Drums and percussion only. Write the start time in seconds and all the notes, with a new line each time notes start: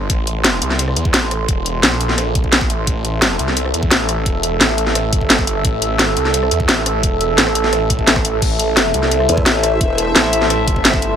0.10 kick, closed hi-hat
0.27 closed hi-hat
0.44 snare, closed hi-hat
0.62 closed hi-hat
0.70 snare
0.79 closed hi-hat
0.88 cross-stick
0.96 closed hi-hat
1.05 kick
1.14 snare, closed hi-hat
1.31 cross-stick, closed hi-hat
1.49 kick, closed hi-hat
1.66 closed hi-hat
1.83 snare, closed hi-hat
2.01 closed hi-hat
2.09 snare
2.18 cross-stick, closed hi-hat
2.35 kick, closed hi-hat
2.44 kick
2.53 snare, closed hi-hat
2.61 kick
2.70 closed hi-hat
2.87 kick, closed hi-hat
3.05 closed hi-hat
3.22 snare, closed hi-hat
3.39 closed hi-hat
3.48 snare
3.57 closed hi-hat
3.65 cross-stick
3.74 closed hi-hat
3.83 kick
3.91 snare, closed hi-hat
4.09 cross-stick, closed hi-hat
4.26 kick, closed hi-hat
4.43 closed hi-hat
4.61 snare, closed hi-hat
4.78 closed hi-hat
4.87 snare
4.95 cross-stick, closed hi-hat
5.13 kick, closed hi-hat
5.21 kick
5.30 snare, closed hi-hat
5.39 kick
5.47 closed hi-hat
5.65 kick, closed hi-hat
5.82 closed hi-hat
5.99 snare, closed hi-hat
6.17 closed hi-hat
6.25 snare
6.34 closed hi-hat
6.43 cross-stick
6.51 closed hi-hat
6.60 kick
6.69 snare, closed hi-hat
6.86 cross-stick, closed hi-hat
7.03 kick, closed hi-hat
7.21 closed hi-hat
7.38 snare, closed hi-hat
7.47 cross-stick
7.55 closed hi-hat
7.64 snare
7.73 cross-stick, closed hi-hat
7.90 kick, closed hi-hat
7.99 kick
8.07 snare, closed hi-hat
8.16 kick, cross-stick
8.25 closed hi-hat
8.42 kick, closed hi-hat, crash
8.59 closed hi-hat
8.77 snare, closed hi-hat
8.94 closed hi-hat
9.03 snare
9.11 closed hi-hat
9.20 cross-stick
9.29 closed hi-hat
9.38 kick
9.46 snare, closed hi-hat
9.64 cross-stick, closed hi-hat
9.81 kick, closed hi-hat
9.98 closed hi-hat
10.16 snare, closed hi-hat
10.33 closed hi-hat
10.42 snare
10.50 cross-stick, closed hi-hat
10.68 kick, closed hi-hat
10.76 kick
10.85 snare, closed hi-hat
10.94 kick
11.02 closed hi-hat